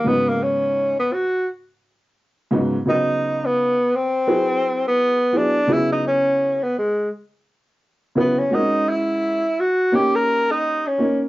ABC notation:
X:1
M:4/4
L:1/16
Q:"Swing 16ths" 1/4=85
K:G#m
V:1 name="Tenor saxophone"
B, A, C3 B, F2 z8 | D3 B,3 ^B,4- B, =B,3 =D2 | E D C3 B, G,2 z6 B, C | D2 E4 F2 =G A2 D2 C2 z |]
V:2 name="Upright piano"
[G,,C,F,B,D]4 z8 z2 [G,,C,F,B,D]2 | [C,F,B,D]4 z4 [F,EGB]4 z2 [F,B,EG]2 | [C,F,B,EG]4 z8 z2 [C,F,B,EB]2 | [G,^B,CFA]4 z4 [A,CD=G]4 z2 [A,CDA]2 |]